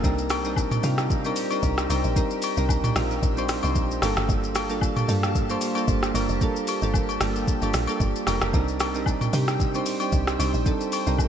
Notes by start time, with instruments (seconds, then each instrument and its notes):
0.03 log drum bass C2, synth keys G3 C4 D4 D#4 A#4, ambient pad G4 C5 G5 A#5, kick, shaker
0.18 shaker
0.30 cross-stick, open hi-hat, high agogo, shaker
0.44 synth keys G3 C4 D4 D#4 A#4, shaker
0.56 kick, low woodblock, shaker
0.71 mid tom, high agogo, shaker
0.83 log drum bass C3, synth keys G3 C4 D4 D#4 F4, open hi-hat, shaker
0.98 cross-stick, shaker
1.10 kick, shaker
1.24 synth keys G3 C4 D4 D#4 A#4, high agogo, shaker
1.36 open hi-hat, shaker
1.51 synth keys G3 C4 D4 D#4 A#4, high agogo, shaker
1.63 log drum bass C2, kick, shaker
1.78 cross-stick, shaker
1.89 log drum bass C2, synth keys G3 C4 D4 D#4 A#4, open hi-hat, high agogo, shaker
2.04 log drum bass A#1, shaker
2.16 synth keys G3 C4 D4 D#4 A#4, kick, shaker
2.31 shaker
2.42 open hi-hat, high agogo, shaker
2.57 log drum bass C2, synth keys G3 C4 D4 D#4 A#4, shaker
2.69 kick, low woodblock, shaker
2.84 mid tom, high agogo, shaker
2.96 log drum bass A#1, synth keys G3 C4 D4 D#4 F4, cross-stick, open hi-hat, shaker
3.11 shaker
3.23 log drum bass A#1, kick, shaker
3.37 synth keys G3 C4 D4 D#4 C5, high agogo, shaker
3.49 cross-stick, open hi-hat, shaker
3.63 log drum bass C2, synth keys G3 C4 D4 D#4 C5, high agogo, shaker
3.75 log drum bass A#1, kick, shaker
3.91 shaker
4.02 log drum bass G1, synth keys G3 A#3 D4 F4 A4, ambient pad A#3 F5 A5, cross-stick, open hi-hat, high agogo, shaker
4.17 log drum bass G1, cross-stick, shaker
4.29 log drum bass G1, kick, shaker
4.44 shaker
4.55 cross-stick, open hi-hat, high agogo, shaker
4.69 synth keys G3 A#3 D4 F4 A4, shaker
4.81 kick, low woodblock, shaker
4.96 mid tom, high agogo, shaker
5.08 log drum bass G2, synth keys G3 A#3 D4 F4 A4, open hi-hat, shaker
5.23 cross-stick, shaker
5.35 kick, shaker
5.49 synth keys G3 A#3 D4 F4 C5, high agogo, shaker
5.61 open hi-hat, shaker
5.75 synth keys G3 A#3 D4 F4 A4, high agogo, shaker
5.88 log drum bass G1, kick, shaker
6.03 cross-stick, shaker
6.14 log drum bass G1, synth keys G3 A#3 D4 F4 A#4, ambient pad G5, open hi-hat, high agogo, shaker
6.29 log drum bass F1, shaker
6.41 synth keys G3 A#3 D4 F4 A4, kick, shaker
6.56 shaker
6.67 open hi-hat, high agogo, shaker
6.82 log drum bass G1, synth keys G3 A#3 D4 F4 A4, shaker
6.94 kick, low woodblock, shaker
7.09 high agogo, shaker
7.21 log drum bass G1, synth keys G3 A#3 D4 F4 A4, cross-stick, open hi-hat, shaker
7.36 shaker
7.48 kick, shaker
7.61 log drum bass G1, synth keys G3 A#3 D4 F4 A4, high agogo, shaker
7.74 log drum bass A#1, cross-stick, open hi-hat, shaker
7.87 synth keys G3 A#3 D4 F4 A4, high agogo, shaker
8.00 log drum bass G1, kick, shaker
8.16 shaker
8.26 log drum bass F1, synth keys G3 A#3 D4 F4 A#4, cross-stick, open hi-hat, high agogo, shaker
8.41 log drum bass F1, cross-stick, shaker
8.53 log drum bass C2, synth keys G3 C4 D4 D#4 A#4, ambient pad C5 G5, kick, shaker
8.68 shaker
8.80 cross-stick, open hi-hat, high agogo, shaker
8.94 synth keys G3 C4 D4 D#4 A#4, shaker
9.06 kick, low woodblock, shaker
9.21 mid tom, high agogo, shaker
9.33 log drum bass C3, synth keys G3 C4 D4 D#4 G4, open hi-hat, shaker
9.48 cross-stick, shaker
9.60 kick, shaker
9.74 synth keys G3 C4 D4 D#4 C5, high agogo, shaker
9.86 open hi-hat, shaker
10.00 synth keys G3 C4 D4 D#4 G4, high agogo, shaker
10.12 log drum bass C2, kick, shaker
10.27 cross-stick, shaker
10.39 log drum bass C2, synth keys G3 C4 D4 D#4 G4, open hi-hat, high agogo, shaker
10.54 log drum bass A#1, shaker
10.65 synth keys G3 C4 D4 D#4 A4, kick, shaker
10.81 shaker
10.92 open hi-hat, high agogo, shaker
11.06 log drum bass C2, synth keys G3 C4 D4 D#4 A#4, shaker
11.18 kick, low woodblock, shaker